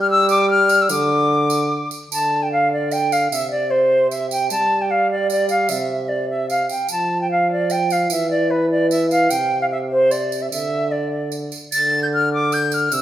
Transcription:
0.00 0.92 G3 medium
0.00 0.10 F6 loud
0.11 0.30 E6 loud
0.29 0.50 D6 loud
0.29 tambourine medium
0.50 0.83 F6 loud
0.69 tambourine medium
0.82 0.90 E6 medium
0.89 1.91 D3 medium
0.89 1.90 D6 loud
0.89 tambourine medium
1.50 tambourine medium
1.91 tambourine medium
2.11 3.27 D3 medium
2.11 2.44 A5 medium
2.11 tambourine medium
2.43 2.52 G5 medium
2.52 2.72 F5 medium
2.73 2.94 D5 medium
2.91 3.14 G5 medium
2.91 tambourine soft
3.12 3.31 F5 medium
3.12 tambourine soft
3.31 4.48 C3 medium
3.31 3.50 E5 medium
3.31 tambourine medium
3.51 3.72 D5 medium
3.71 4.10 C5 medium
4.11 4.30 E5 medium
4.11 tambourine soft
4.31 4.50 G5 medium
4.31 tambourine soft
4.50 5.72 G3 medium
4.50 4.83 A5 loud
4.50 tambourine medium
4.82 4.92 G5 medium
4.91 5.10 F5 medium
5.12 5.31 D5 medium
5.30 5.49 D5 medium
5.30 tambourine soft
5.49 5.70 F5 medium
5.49 tambourine soft
5.69 6.71 C3 medium
5.69 6.10 E5 medium
5.69 tambourine medium
6.09 6.29 D5 medium
6.30 6.49 E5 medium
6.50 6.70 F5 medium
6.50 tambourine soft
6.69 6.91 G5 medium
6.69 tambourine soft
6.89 8.07 F3 medium
6.89 7.21 A5 medium
6.89 tambourine medium
7.21 7.31 G5 medium
7.31 7.51 F5 medium
7.52 7.73 D5 medium
7.70 7.94 G5 medium
7.70 tambourine soft
7.90 8.11 F5 medium
7.90 tambourine soft
8.10 9.28 E3 medium
8.10 8.30 E5 medium
8.10 tambourine medium
8.31 8.52 D5 medium
8.51 8.70 B4 medium
8.71 8.90 D5 medium
8.91 9.10 E5 medium
8.91 tambourine soft
9.11 9.32 F5 medium
9.11 tambourine soft
9.30 10.49 C3 medium
9.30 9.61 G5 medium
9.30 tambourine medium
9.62 9.66 F5 medium
9.72 9.78 E5 medium
9.91 10.13 C5 medium
10.11 10.44 D5 medium
10.11 tambourine soft
10.32 tambourine soft
10.42 10.51 E5 medium
10.51 11.50 D3 medium
10.51 10.93 E5 medium
10.51 tambourine medium
10.92 11.32 D5 medium
11.32 tambourine soft
11.52 tambourine soft
11.72 12.88 D3 medium
11.72 12.00 A6 loud
11.72 tambourine medium
12.03 12.07 G6 medium
12.14 12.32 F6 loud
12.34 12.55 D6 loud
12.52 12.76 G6 loud
12.52 tambourine soft
12.72 12.95 F6 medium
12.72 tambourine medium
12.92 13.02 C3 medium
12.92 13.02 E6 loud
12.92 tambourine medium

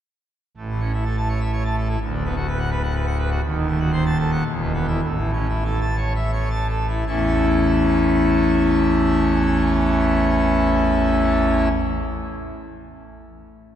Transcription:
0.57 1.97 A1 medium
0.57 1.97 A2 medium
0.69 0.80 E3 soft
0.80 0.92 C#4 medium
0.93 1.04 E4 medium
1.05 1.16 A4 medium
1.17 1.28 A5 medium
1.29 1.40 C#5 medium
1.40 1.51 E5 medium
1.52 1.63 C#5 medium
1.65 1.76 A5 medium
1.77 1.88 A4 medium
1.89 1.99 E4 medium
2.00 3.39 D1 medium
2.00 3.39 D2 medium
2.12 2.23 D3 medium
2.24 2.35 B3 medium
2.36 2.47 F#4 medium
2.48 2.59 B4 medium
2.59 2.70 F#5 medium
2.71 2.82 B4 medium
2.83 2.94 F#5 medium
2.95 3.06 B4 medium
3.07 3.18 F#5 medium
3.19 3.30 B4 medium
3.30 3.41 F#4 medium
3.43 4.42 D#1 medium
3.43 4.42 D#2 medium
3.55 3.66 D#3 medium
3.68 3.79 A3 medium
3.79 3.91 F#4 medium
3.92 4.04 C5 medium
4.06 4.17 A5 medium
4.19 4.31 A4 medium
4.32 4.43 F#5 medium
4.45 5.01 E1 medium
4.45 5.01 E2 medium
4.60 4.72 B2 medium
4.73 4.86 B3 medium
4.87 5.00 E4 medium
5.02 7.03 A1 medium
5.02 7.04 A2 medium
5.17 5.31 E3 soft
5.33 5.47 C#4 medium
5.49 5.63 E4 medium
5.65 5.79 A4 medium
5.81 5.96 A5 medium
5.97 6.13 C#5 medium
6.15 6.31 E5 medium
6.33 6.49 C#5 medium
6.50 6.67 A5 medium
6.69 6.86 A4 medium
6.88 7.04 E4 medium
7.07 11.68 A1 medium
7.07 11.68 E2 medium
7.07 11.68 E3 medium
7.07 11.68 A3 medium
7.07 11.68 C#4 soft
7.07 11.68 E4 medium

